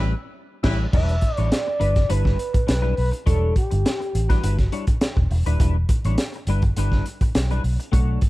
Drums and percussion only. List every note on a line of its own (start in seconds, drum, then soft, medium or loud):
0.64 kick loud
0.64 snare loud
0.64 crash medium
0.93 kick loud
0.93 crash loud
1.09 closed hi-hat soft
1.21 kick medium
1.21 closed hi-hat medium
1.37 closed hi-hat soft
1.52 snare loud
1.52 closed hi-hat medium
1.81 closed hi-hat medium
1.96 kick medium
1.96 snare soft
1.96 closed hi-hat soft
2.10 closed hi-hat loud
2.25 kick medium
2.25 snare soft
2.39 closed hi-hat medium
2.54 kick loud
2.54 closed hi-hat soft
2.68 snare loud
2.68 closed hi-hat loud
2.97 open hi-hat medium
3.13 closed hi-hat medium
3.27 kick loud
3.27 closed hi-hat medium
3.56 kick medium
3.56 closed hi-hat medium
3.71 closed hi-hat soft
3.86 snare loud
3.86 closed hi-hat medium
4.02 closed hi-hat soft
4.15 closed hi-hat medium
4.30 kick loud
4.30 snare soft
4.30 closed hi-hat soft
4.44 closed hi-hat loud
4.58 kick medium
4.58 snare soft
4.58 closed hi-hat soft
4.72 closed hi-hat medium
4.87 kick medium
4.87 closed hi-hat medium
5.01 snare loud
5.01 closed hi-hat loud
5.17 kick medium
5.31 open hi-hat medium
5.46 closed hi-hat medium
5.60 kick loud
5.60 closed hi-hat medium
5.89 kick loud
5.89 closed hi-hat medium
6.05 closed hi-hat soft
6.18 snare loud
6.18 closed hi-hat loud
6.34 closed hi-hat soft
6.47 closed hi-hat medium
6.62 kick loud
6.62 closed hi-hat soft
6.76 closed hi-hat medium
6.92 kick medium
6.92 snare soft
7.06 closed hi-hat medium
7.21 kick medium
7.21 closed hi-hat medium
7.35 snare loud
7.35 closed hi-hat loud
7.50 closed hi-hat soft
7.64 open hi-hat medium
7.80 closed hi-hat medium
7.93 kick loud
7.93 closed hi-hat medium
8.21 kick loud
8.21 closed hi-hat medium